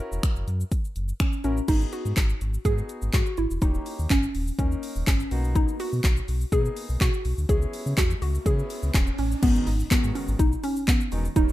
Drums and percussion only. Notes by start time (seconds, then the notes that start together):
0.12 shaker
0.23 finger snap, kick, closed hi-hat, shaker
0.36 shaker
0.48 closed hi-hat, shaker
0.60 shaker
0.72 kick, closed hi-hat, shaker
0.85 shaker
0.96 closed hi-hat, shaker
1.09 shaker
1.20 finger snap, kick, closed hi-hat, shaker
1.33 shaker
1.44 closed hi-hat, shaker
1.57 shaker
1.68 kick, closed hi-hat, crash, shaker
1.81 shaker
1.93 closed hi-hat, shaker
2.06 shaker
2.17 kick, clap, closed hi-hat, shaker
2.29 shaker
2.41 closed hi-hat, shaker
2.54 shaker
2.65 kick, closed hi-hat, shaker
2.78 shaker
2.89 closed hi-hat, shaker
3.02 shaker
3.13 kick, clap, closed hi-hat, shaker
3.26 shaker
3.37 closed hi-hat, shaker
3.51 shaker
3.62 kick, closed hi-hat, shaker
3.74 shaker
3.86 open hi-hat, shaker
3.99 shaker
4.10 kick, clap, closed hi-hat, shaker
4.23 shaker
4.35 open hi-hat, shaker
4.47 shaker
4.59 kick, closed hi-hat, shaker
4.72 shaker
4.83 open hi-hat, shaker
4.96 shaker
5.07 kick, clap, closed hi-hat, shaker
5.20 shaker
5.31 open hi-hat, shaker
5.44 shaker
5.55 kick, closed hi-hat, shaker
5.68 shaker
5.80 open hi-hat, shaker
5.93 shaker
6.04 kick, clap, closed hi-hat, shaker
6.17 shaker
6.28 open hi-hat, shaker
6.41 shaker
6.52 kick, closed hi-hat, shaker
6.65 shaker
6.77 open hi-hat, shaker
6.89 shaker
7.01 kick, clap, closed hi-hat, shaker
7.14 shaker
7.25 open hi-hat, shaker
7.38 shaker
7.49 kick, closed hi-hat, shaker
7.62 shaker
7.73 open hi-hat, shaker
7.87 shaker
7.98 kick, clap, closed hi-hat, shaker
8.10 shaker
8.22 open hi-hat, shaker
8.35 shaker
8.46 kick, closed hi-hat, shaker
8.59 shaker
8.70 open hi-hat, shaker
8.83 shaker
8.94 kick, clap, closed hi-hat, shaker
9.07 shaker
9.18 open hi-hat, shaker
9.31 shaker
9.43 kick, closed hi-hat, crash, shaker
9.55 shaker
9.67 open hi-hat, shaker
9.80 shaker
9.91 kick, clap, closed hi-hat, shaker
10.04 shaker
10.15 open hi-hat, shaker
10.28 shaker
10.39 kick, closed hi-hat, shaker
10.52 shaker
10.64 open hi-hat, shaker
10.76 shaker
10.88 kick, clap, closed hi-hat, shaker
11.00 shaker
11.12 open hi-hat, shaker
11.25 shaker
11.36 kick, closed hi-hat, shaker
11.49 shaker